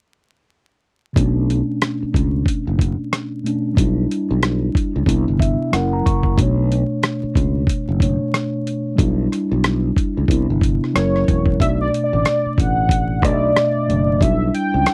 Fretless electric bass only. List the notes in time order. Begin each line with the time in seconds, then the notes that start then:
1.16 B1
2.03 muted fretless electric bass stroke
2.15 C#2
2.46 muted fretless electric bass stroke
2.67 F#1
3.77 B1
4.31 B1
4.75 muted fretless electric bass stroke
4.96 C#2
5.07 C2
5.28 G1
5.73 F#1
6.07 F#1
6.38 B1
7.23 muted fretless electric bass stroke
7.36 C#2
7.67 muted fretless electric bass stroke
7.89 F#1
8.99 B1
9.52 B1
9.97 muted fretless electric bass stroke
10.17 C#2
10.29 C2
10.50 G1
10.96 F#1
11.29 E1
11.61 B1
12.13 A1
12.46 muted fretless electric bass stroke
12.58 A1
13.22 B1
13.89 F#1
14.21 B1
14.74 C#2